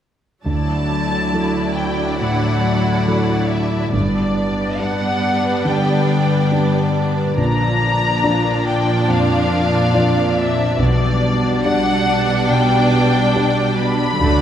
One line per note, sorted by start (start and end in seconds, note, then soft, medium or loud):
0.45 1.31 D2 soft
0.45 3.90 D2 soft
0.45 1.30 D2 soft
0.45 3.97 D3 soft
0.45 3.89 F#3 soft
0.45 3.89 D4 soft
0.45 3.90 E4 soft
0.45 3.90 D5 soft
0.45 1.73 A5 medium
0.68 2.40 F#3 soft
0.90 1.97 E4 soft
1.12 1.76 A4 soft
1.33 2.16 F#3 soft
1.33 2.16 E4 soft
1.33 2.17 A4 soft
1.55 3.27 E5 soft
1.76 2.84 A4 soft
1.76 2.20 G5 soft
1.99 2.62 E4 soft
2.19 3.59 A2 soft
2.19 4.36 D4 soft
2.19 3.47 F#5 soft
2.41 3.96 F#3 soft
2.63 3.70 E4 soft
2.85 3.49 A4 soft
3.06 3.90 F#3 soft
3.06 3.90 E4 soft
3.06 3.97 F#4 soft
3.06 3.90 A4 soft
3.29 3.97 E5 soft
3.48 3.97 A4 soft
3.48 3.92 E5 soft
3.71 3.96 E4 soft
3.93 4.76 G1 soft
3.93 4.77 G2 soft
3.93 7.41 G2 soft
3.93 7.34 G2 soft
3.93 7.34 G3 soft
3.93 7.34 B3 soft
3.93 7.35 D4 soft
3.93 4.78 D5 soft
3.93 7.34 D5 soft
4.15 5.88 G3 soft
4.37 5.44 D4 soft
4.58 5.23 B4 soft
4.79 5.62 G3 soft
4.79 5.62 D4 soft
4.79 6.52 G4 soft
4.79 5.63 B4 soft
4.79 5.66 F#5 medium
5.01 6.73 D5 soft
5.24 6.30 B4 soft
5.45 6.09 D4 soft
5.65 7.03 D3 soft
5.65 7.42 D3 soft
5.65 6.95 G5 soft
5.89 7.42 G3 soft
6.10 7.16 D4 soft
6.31 6.95 B4 soft
6.52 7.34 G3 soft
6.52 7.34 D4 soft
6.52 7.42 G4 soft
6.52 7.34 B4 soft
6.75 8.01 D5 soft
6.96 7.42 B4 soft
7.17 7.80 D4 soft
7.37 8.21 A#1 soft
7.37 8.19 A#1 soft
7.37 10.75 A#2 soft
7.37 10.83 A#2 soft
7.37 10.75 F3 soft
7.37 10.75 D4 soft
7.37 10.76 D4 soft
7.37 10.75 D5 soft
7.37 8.62 A#5 medium
7.59 8.85 F3 soft
7.82 8.64 D4 soft
8.02 8.43 D5 soft
8.23 9.05 F3 soft
8.23 9.05 D4 soft
8.23 9.91 F4 soft
8.23 9.05 D5 soft
8.45 9.70 D5 soft
8.65 9.49 D4 soft
8.65 9.09 G5 medium
8.87 9.27 F3 soft
9.08 10.45 F2 soft
9.08 10.82 A#3 soft
9.08 10.37 F5 medium
9.29 10.55 F3 soft
9.50 10.34 D4 soft
9.71 10.12 D5 soft
9.92 10.75 F3 soft
9.92 10.75 D4 soft
9.92 10.82 F4 soft
9.92 10.76 D5 soft
10.13 11.40 D5 soft
10.35 11.19 D4 soft
10.35 10.80 E5 medium
10.57 10.82 F3 soft
10.78 11.60 B1 soft
10.78 11.62 B1 soft
10.78 12.48 B2 soft
10.78 14.17 B2 medium
10.78 14.18 G3 medium
10.78 14.17 D4 medium
10.78 14.18 D4 medium
10.78 14.17 D5 soft
10.78 11.64 D5 medium
10.99 12.26 G3 soft
11.20 12.04 D4 soft
11.42 11.83 D5 soft
11.63 12.46 G3 soft
11.63 12.46 D4 soft
11.63 13.34 G4 soft
11.63 12.46 D5 soft
11.63 12.47 F#5 medium
11.84 13.12 D5 soft
12.05 12.91 D4 soft
12.27 13.98 G3 soft
12.49 14.24 B2 soft
12.49 13.87 B2 soft
12.49 13.78 G5 medium
12.71 14.25 B3 soft
12.92 13.77 D4 soft
13.13 13.56 D5 soft
13.35 14.17 G3 soft
13.35 14.17 D4 soft
13.35 14.24 G4 soft
13.35 14.18 D5 soft
13.57 14.42 D5 soft
13.78 14.42 D4 soft
13.78 14.42 B5 medium
13.99 14.24 G3 soft
14.21 14.42 D2 soft
14.21 14.42 D3 soft
14.21 14.42 D3 medium
14.21 14.42 F#3 soft
14.21 14.42 A3 soft
14.21 14.42 D4 medium
14.21 14.42 D5 soft